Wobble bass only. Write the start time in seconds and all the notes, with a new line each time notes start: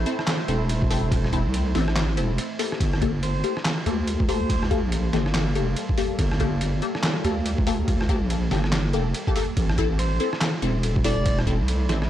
0.48 E1
1.46 C2
1.75 A1
2.17 E1
2.80 G1
3.86 D2
4.83 A#1
5.13 G1
5.55 F1
6.19 G1
7.24 D2
8.22 A#1
8.51 G1
8.93 F1
9.57 A1
10.62 E1
11.60 C2
11.89 A1